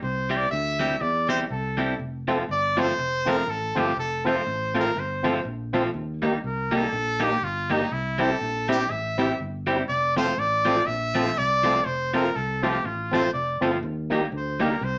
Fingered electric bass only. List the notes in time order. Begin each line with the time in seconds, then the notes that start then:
0.03 C2
0.52 D2
1.01 E2
1.50 C2
1.99 F1
2.49 G1
2.98 F1
3.48 A1
3.76 G1
3.97 F1
4.47 A1
4.96 G1
5.45 A#1
5.94 D#2
6.44 C2
6.92 A#1
7.41 G1
7.91 C2
8.41 A#1
8.90 A1
9.40 G1
9.89 F1
10.38 A1
10.88 A#1
11.37 C2
11.86 F1
12.36 C2
12.84 A1
13.33 F1
13.61 G1
13.83 D#2
14.32 D2
14.81 C2